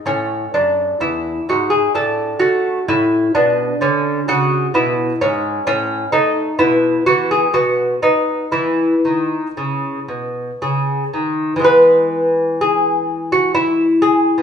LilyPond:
<<
  \new Staff \with { instrumentName = "Lute" } { \time 3/4 \key a \major \tempo 4 = 63 cis'8 d'8 e'8 fis'16 gis'16 a'8 fis'8 | e'8 d'8 cis'8 fis'8 e'8 cis'8 | \key e \major cis'8 dis'8 e'8 fis'16 gis'16 fis'8 dis'8 | e'2 gis'4 |
b'4 gis'8. fis'16 e'8 gis'8 | }
  \new Staff \with { instrumentName = "Lute" } { \clef bass \time 3/4 \key a \major << { a2 d'4 | cis'2. | \key e \major r4 b4 b4 | b2. |
<e gis b>2. | } \\ { a,8 fis,8 e,8 gis,8 a,8 a8 | a,8 b,8 d8 cis8 b,8 gis,8 | a,8 a8 b,8 e8 b,8 b8 | e8 dis8 cis8 b,8 cis8 dis8 |
r2. | } >> }
>>